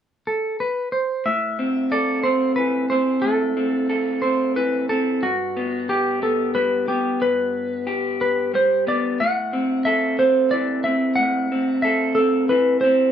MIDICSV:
0, 0, Header, 1, 3, 480
1, 0, Start_track
1, 0, Tempo, 661521
1, 911, Time_signature, 6, 3, 24, 8
1, 9519, End_track
2, 0, Start_track
2, 0, Title_t, "Electric slide guitar"
2, 0, Program_c, 0, 29
2, 197, Note_on_c, 0, 69, 49
2, 434, Note_off_c, 0, 69, 0
2, 437, Note_on_c, 0, 71, 51
2, 657, Note_off_c, 0, 71, 0
2, 669, Note_on_c, 0, 72, 46
2, 912, Note_on_c, 0, 76, 53
2, 917, Note_off_c, 0, 72, 0
2, 1391, Note_on_c, 0, 74, 56
2, 1405, Note_off_c, 0, 76, 0
2, 1614, Note_off_c, 0, 74, 0
2, 1621, Note_on_c, 0, 72, 54
2, 1854, Note_off_c, 0, 72, 0
2, 1857, Note_on_c, 0, 71, 49
2, 2100, Note_off_c, 0, 71, 0
2, 2103, Note_on_c, 0, 72, 51
2, 2335, Note_on_c, 0, 69, 54
2, 2354, Note_off_c, 0, 72, 0
2, 3060, Note_on_c, 0, 72, 55
2, 3084, Note_off_c, 0, 69, 0
2, 3308, Note_off_c, 0, 72, 0
2, 3311, Note_on_c, 0, 71, 54
2, 3534, Note_off_c, 0, 71, 0
2, 3550, Note_on_c, 0, 69, 52
2, 3794, Note_on_c, 0, 66, 56
2, 3797, Note_off_c, 0, 69, 0
2, 4243, Note_off_c, 0, 66, 0
2, 4275, Note_on_c, 0, 67, 51
2, 4517, Note_off_c, 0, 67, 0
2, 4520, Note_on_c, 0, 69, 49
2, 4748, Note_off_c, 0, 69, 0
2, 4751, Note_on_c, 0, 71, 60
2, 4974, Note_off_c, 0, 71, 0
2, 4993, Note_on_c, 0, 67, 48
2, 5215, Note_off_c, 0, 67, 0
2, 5237, Note_on_c, 0, 71, 60
2, 5949, Note_off_c, 0, 71, 0
2, 5958, Note_on_c, 0, 71, 57
2, 6202, Note_off_c, 0, 71, 0
2, 6206, Note_on_c, 0, 72, 58
2, 6443, Note_off_c, 0, 72, 0
2, 6446, Note_on_c, 0, 74, 55
2, 6677, Note_on_c, 0, 78, 59
2, 6686, Note_off_c, 0, 74, 0
2, 7148, Note_on_c, 0, 76, 62
2, 7169, Note_off_c, 0, 78, 0
2, 7373, Note_off_c, 0, 76, 0
2, 7393, Note_on_c, 0, 72, 61
2, 7626, Note_on_c, 0, 74, 66
2, 7640, Note_off_c, 0, 72, 0
2, 7862, Note_off_c, 0, 74, 0
2, 7865, Note_on_c, 0, 76, 59
2, 8094, Note_on_c, 0, 78, 68
2, 8116, Note_off_c, 0, 76, 0
2, 8555, Note_off_c, 0, 78, 0
2, 8579, Note_on_c, 0, 76, 61
2, 8815, Note_on_c, 0, 69, 57
2, 8834, Note_off_c, 0, 76, 0
2, 9062, Note_off_c, 0, 69, 0
2, 9065, Note_on_c, 0, 71, 60
2, 9291, Note_off_c, 0, 71, 0
2, 9294, Note_on_c, 0, 72, 57
2, 9519, Note_off_c, 0, 72, 0
2, 9519, End_track
3, 0, Start_track
3, 0, Title_t, "Clean electric guitar"
3, 0, Program_c, 1, 27
3, 912, Note_on_c, 1, 45, 41
3, 1153, Note_on_c, 1, 60, 40
3, 1391, Note_on_c, 1, 69, 41
3, 1625, Note_off_c, 1, 60, 0
3, 1634, Note_on_c, 1, 60, 46
3, 1871, Note_on_c, 1, 52, 40
3, 2105, Note_off_c, 1, 60, 0
3, 2111, Note_off_c, 1, 45, 0
3, 2114, Note_on_c, 1, 60, 43
3, 2350, Note_on_c, 1, 45, 42
3, 2580, Note_off_c, 1, 60, 0
3, 2589, Note_on_c, 1, 60, 45
3, 2590, Note_off_c, 1, 69, 0
3, 2826, Note_on_c, 1, 69, 46
3, 3060, Note_off_c, 1, 60, 0
3, 3068, Note_on_c, 1, 60, 43
3, 3070, Note_off_c, 1, 52, 0
3, 3309, Note_on_c, 1, 52, 43
3, 3542, Note_off_c, 1, 60, 0
3, 3550, Note_off_c, 1, 45, 0
3, 3550, Note_on_c, 1, 60, 40
3, 3788, Note_off_c, 1, 69, 0
3, 3790, Note_off_c, 1, 52, 0
3, 3790, Note_off_c, 1, 60, 0
3, 3794, Note_on_c, 1, 43, 47
3, 4038, Note_on_c, 1, 59, 44
3, 4279, Note_on_c, 1, 67, 42
3, 4505, Note_off_c, 1, 59, 0
3, 4514, Note_on_c, 1, 59, 42
3, 4752, Note_on_c, 1, 55, 42
3, 4985, Note_off_c, 1, 59, 0
3, 4993, Note_off_c, 1, 43, 0
3, 4994, Note_on_c, 1, 59, 43
3, 5231, Note_on_c, 1, 43, 39
3, 5475, Note_off_c, 1, 67, 0
3, 5709, Note_on_c, 1, 67, 45
3, 5952, Note_off_c, 1, 55, 0
3, 6193, Note_off_c, 1, 59, 0
3, 6194, Note_on_c, 1, 55, 41
3, 6432, Note_off_c, 1, 43, 0
3, 6435, Note_on_c, 1, 59, 43
3, 6671, Note_off_c, 1, 67, 0
3, 6673, Note_off_c, 1, 55, 0
3, 6673, Note_off_c, 1, 59, 0
3, 6676, Note_on_c, 1, 45, 44
3, 6915, Note_on_c, 1, 60, 44
3, 7157, Note_on_c, 1, 69, 50
3, 7387, Note_off_c, 1, 60, 0
3, 7396, Note_on_c, 1, 60, 41
3, 7636, Note_on_c, 1, 52, 46
3, 7866, Note_off_c, 1, 60, 0
3, 7875, Note_off_c, 1, 45, 0
3, 7875, Note_on_c, 1, 60, 44
3, 8115, Note_on_c, 1, 45, 44
3, 8349, Note_off_c, 1, 60, 0
3, 8356, Note_off_c, 1, 69, 0
3, 8358, Note_on_c, 1, 60, 42
3, 8594, Note_on_c, 1, 69, 45
3, 8826, Note_off_c, 1, 60, 0
3, 8834, Note_on_c, 1, 60, 45
3, 8835, Note_off_c, 1, 52, 0
3, 9073, Note_on_c, 1, 52, 48
3, 9305, Note_off_c, 1, 60, 0
3, 9314, Note_on_c, 1, 60, 51
3, 9315, Note_off_c, 1, 45, 0
3, 9519, Note_off_c, 1, 52, 0
3, 9519, Note_off_c, 1, 60, 0
3, 9519, Note_off_c, 1, 69, 0
3, 9519, End_track
0, 0, End_of_file